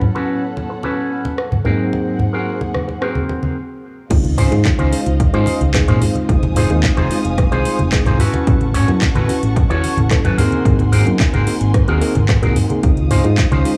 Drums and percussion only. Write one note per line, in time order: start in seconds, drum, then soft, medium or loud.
0.01 low conga medium
0.16 muted conga soft
0.57 muted conga medium
0.83 muted conga soft
1.25 muted conga medium
1.38 cross-stick medium
1.52 muted conga soft
1.52 high conga medium
1.52 low conga medium
1.65 low conga medium
1.93 muted conga medium
2.19 muted conga soft
2.19 low conga medium
2.61 muted conga medium
2.75 cross-stick medium
2.75 high conga medium
2.89 muted conga soft
3.02 cross-stick medium
3.15 high conga medium
3.29 muted conga medium
3.43 high conga medium
4.10 kick loud
4.10 closed hi-hat medium
4.10 crash loud
4.10 muted conga medium
4.24 closed hi-hat soft
4.24 high conga medium
4.38 open hi-hat loud
4.38 low conga loud
4.52 closed hi-hat soft
4.52 muted conga medium
4.65 kick loud
4.65 clap loud
4.65 closed hi-hat medium
4.79 closed hi-hat soft
4.79 high conga medium
4.93 open hi-hat loud
5.06 closed hi-hat medium
5.06 muted conga medium
5.20 kick loud
5.20 closed hi-hat medium
5.34 closed hi-hat soft
5.46 open hi-hat loud
5.46 muted conga medium
5.61 closed hi-hat soft
5.61 high conga medium
5.74 kick loud
5.74 cross-stick medium
5.74 clap loud
5.74 closed hi-hat medium
5.88 closed hi-hat medium
5.88 low conga medium
6.01 open hi-hat loud
6.01 muted conga medium
6.01 low conga medium
6.15 closed hi-hat soft
6.15 high conga medium
6.29 kick loud
6.29 closed hi-hat medium
6.43 closed hi-hat soft
6.43 muted conga medium
6.43 high conga medium
6.56 open hi-hat loud
6.56 low conga loud
6.70 closed hi-hat soft
6.83 kick loud
6.83 clap loud
6.83 closed hi-hat medium
6.97 closed hi-hat soft
6.97 muted conga medium
6.97 high conga medium
7.11 open hi-hat loud
7.25 closed hi-hat medium
7.38 kick loud
7.38 cross-stick medium
7.38 closed hi-hat medium
7.38 muted conga medium
7.52 closed hi-hat soft
7.65 open hi-hat loud
7.79 closed hi-hat soft
7.79 high conga medium
7.92 kick loud
7.92 cross-stick medium
7.92 clap loud
7.92 closed hi-hat medium
7.92 muted conga soft
8.06 closed hi-hat medium
8.06 low conga medium
8.19 open hi-hat loud
8.19 low conga medium
8.33 closed hi-hat soft
8.33 muted conga medium
8.33 high conga medium
8.47 kick loud
8.47 closed hi-hat medium
8.60 closed hi-hat soft
8.60 high conga medium
8.74 open hi-hat loud
8.74 low conga medium
8.88 closed hi-hat soft
8.88 muted conga medium
9.02 kick loud
9.02 clap loud
9.02 closed hi-hat medium
9.15 closed hi-hat soft
9.15 high conga medium
9.29 open hi-hat loud
9.29 muted conga medium
9.43 closed hi-hat medium
9.56 kick loud
9.56 closed hi-hat medium
9.71 closed hi-hat soft
9.83 open hi-hat loud
9.83 muted conga soft
9.97 closed hi-hat soft
9.97 high conga medium
10.11 kick loud
10.11 cross-stick medium
10.11 clap loud
10.11 closed hi-hat medium
10.24 closed hi-hat soft
10.24 muted conga medium
10.24 low conga medium
10.38 open hi-hat loud
10.38 low conga loud
10.51 closed hi-hat soft
10.51 high conga medium
10.65 kick loud
10.65 closed hi-hat medium
10.79 closed hi-hat soft
10.79 muted conga soft
10.79 high conga medium
10.92 open hi-hat loud
10.92 low conga medium
11.07 closed hi-hat soft
11.20 kick loud
11.20 clap loud
11.20 closed hi-hat medium
11.20 muted conga medium
11.33 closed hi-hat soft
11.33 high conga medium
11.47 open hi-hat loud
11.61 closed hi-hat medium
11.74 kick loud
11.74 cross-stick medium
11.74 closed hi-hat medium
11.74 muted conga soft
11.88 closed hi-hat soft
12.01 open hi-hat loud
12.15 closed hi-hat soft
12.15 muted conga medium
12.15 high conga medium
12.29 kick loud
12.29 cross-stick medium
12.29 clap loud
12.29 closed hi-hat medium
12.43 closed hi-hat soft
12.43 low conga medium
12.56 open hi-hat loud
12.56 low conga medium
12.70 closed hi-hat soft
12.70 muted conga soft
12.70 high conga medium
12.83 kick loud
12.83 closed hi-hat medium
12.83 muted conga medium
12.97 closed hi-hat soft
12.97 high conga medium
13.11 open hi-hat loud
13.11 low conga loud
13.24 closed hi-hat soft
13.24 muted conga medium
13.38 kick loud
13.38 clap loud
13.38 closed hi-hat medium
13.52 closed hi-hat soft
13.52 high conga medium
13.65 open hi-hat loud